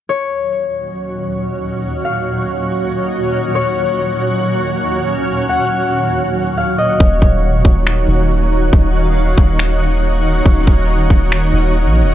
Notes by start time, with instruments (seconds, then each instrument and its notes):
0.09 ambient pad D#2 A#2 F#3 F#4 C#5, synth texture C#4 F#4 D#5 F6, harp C#5
2.05 harp F5
3.55 harp C#5, synth texture C#5
5.49 harp F#5
6.57 harp F5
6.78 harp D#5
7.00 808-style bass D#1, ambient pad D#3 A#3 D#4 F#4 C#5, synth texture C#4 F#4 F5, kick
7.22 808-style bass D#1, kick
7.54 808-style bass F1
7.65 808-style bass D#1, kick
7.87 finger snap
8.08 808-style bass D#1
8.73 808-style bass D#1, kick
9.38 808-style bass D#1, kick
9.59 finger snap
10.46 808-style bass D#1, synth texture F#5, kick
10.67 808-style bass D#1, kick
11.10 808-style bass D#1, kick
11.32 finger snap
11.54 808-style bass D#1
11.86 808-style bass A#1
12.02 808-style bass D#1